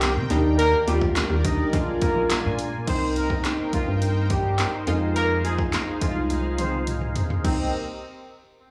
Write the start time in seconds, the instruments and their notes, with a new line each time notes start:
Already playing: fm bass C2, supersaw synth D#3 A#4 C5 G5, analog polysynth G3 A#3 C4 D#4, horn section G3 G4
0.02 snare, clap, closed hi-hat
0.16 fm bass C3
0.30 fm bass D#2, analog polysynth G3 A#3 D4 D#4, supersaw synth A#4 D5, closed hi-hat
0.59 horn section A#3 A#4, closed hi-hat
0.87 fm bass D#2, analog polysynth G3 A#3 D4 F4, horn section G3 G4, closed hi-hat
1.01 kick
1.16 snare, clap, closed hi-hat
1.30 fm bass D#2
1.44 analog polysynth G3 A#3 D4 D#4, horn section D#4 D#5, kick, closed hi-hat
1.73 fm bass A#1, analog polysynth G#3 A#3 D4 F4, supersaw synth F4 G#5, kick, closed hi-hat
2.02 horn section A#3 A#4, kick, closed hi-hat
2.16 fm bass A#1
2.30 snare, clap, closed hi-hat
2.45 fm bass A#2
2.59 closed hi-hat
2.87 fm bass C2, analog polysynth A#3 C4 D#4, horn section C4 C5, supersaw synth D#4 A#4 C5 G5, kick, closed hi-hat, crash
3.16 horn section A#3 A#4, closed hi-hat
3.30 analog polysynth A#3 C4 D#4, kick
3.45 snare, clap, closed hi-hat
3.73 fm bass C2, horn section F3 F4, kick, closed hi-hat
3.87 fm bass G2
4.02 closed hi-hat
4.30 horn section G3 G4, kick, closed hi-hat
4.59 snare, clap, closed hi-hat
4.87 fm bass F2, analog polysynth G#3 D#4 F4, supersaw synth G#4 F5, closed hi-hat
5.16 horn section A#3 A#4, closed hi-hat
5.44 analog polysynth G#3 D#4 F4, horn section G#3 G#4, closed hi-hat
5.59 kick
5.73 snare, clap, closed hi-hat
6.01 fm bass F2, horn section F3 F4, analog polysynth G#3 D#4 F4, kick, closed hi-hat
6.16 fm bass C2
6.30 closed hi-hat, high tom
6.58 horn section C4 C5, closed hi-hat, mid tom
6.87 closed hi-hat, mid tom
7.02 mid tom
7.16 closed hi-hat, floor tom
7.30 floor tom
7.44 fm bass C2, analog polysynth A#3 C4 D#4, supersaw synth C4 G4 A#4 D#5, horn section C4, kick, crash